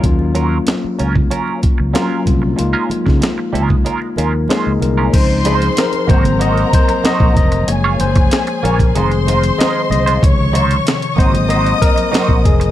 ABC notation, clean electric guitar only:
X:1
M:4/4
L:1/16
Q:1/4=94
K:Db
V:1 name="Clean electric guitar"
z2 [G,DFB] z3 [G,DFB] z [G,DFB]2 z2 [G,DFB]2 z2 | z [A,DFB] z4 [A,DFB] z [A,DFB] z [A,DFB] z [A,DFc] z2 [A,DFB] | z2 [A,EFc] z3 [B,EGc] z [B,EGc]2 z2 [B,EGc]2 z2 | z [B,FAd] z4 [B,FAd] z [A,EFc] z [A,EFc] z [A,EFe] z2 [A,EFc] |
z2 [A,EFc] z3 [B,EGc] z [B,EGc]2 z2 [B,EGc]2 z2 |]